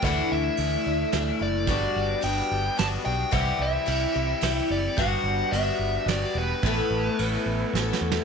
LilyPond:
<<
  \new Staff \with { instrumentName = "Lead electric guitar" } { \time 3/4 \key g \major \tempo 4 = 109 fis''8 e''2 d''8~ | d''4 g''4 a''8 g''8 | fis''8 e''2 d''8 | fis''4 e''4 d''8 b'8~ |
b'2~ b'8 r8 | }
  \new Staff \with { instrumentName = "Accordion" } { \time 3/4 \key g \major r2. | <g b d'>2. | <g c' e'>2. | <g b fis'>2. |
<a b e'>2. | }
  \new Staff \with { instrumentName = "Clean electric guitar" } { \time 3/4 \key g \major <d e a d' e'>2. | <g b d' fis'>2. | <c e g e' g'>2. | <g b d' fis'>2. |
<a, e a b a'>2. | }
  \new Staff \with { instrumentName = "Twelve-string acoustic guitar" } { \time 3/4 \key g \major <d e a d' e'>4 <e a d' e'>8 <a d' e'>8 <e a d' e'>8 <a d' e'>8 | <g b d' fis'>4 <g b d'>4 <g b d' fis'>8 <b d' fis'>8 | <c e g e' g'>4 <e g e' g'>8 <g e' g'>8 <e g e' g'>4 | <g b d' fis'>4 <g b d' fis'>4 <g b d' fis'>4 |
<a, e a b a'>4 <e a b a'>4 <e a b a'>4 | }
  \new Staff \with { instrumentName = "Fingered electric bass" } { \clef bass \time 3/4 \key g \major d,8 d,8 d,8 d,8 d,8 fis,,8 | g,,8 g,,8 g,,8 g,,8 g,,8 b,,8 | c,8 c,8 c,8 c,8 c,8 fis,,8 | g,,8 g,,8 g,,8 g,,8 g,,8 e,,8 |
a,,8 a,,8 a,,8 a,,8 a,,8 e,8 | }
  \new DrumStaff \with { instrumentName = "Drums" } \drummode { \time 3/4 <bd cymr>4 cymr4 <cymr sn>4 | <bd cymr>4 cymr4 <cymr sn>4 | <bd cymr>4 cymr4 <cymr sn>4 | <bd cymr>4 cymr4 <cymr sn>4 |
<bd cymr>4 cymr4 \tuplet 3/2 { sn8 sn8 sn8 } | }
>>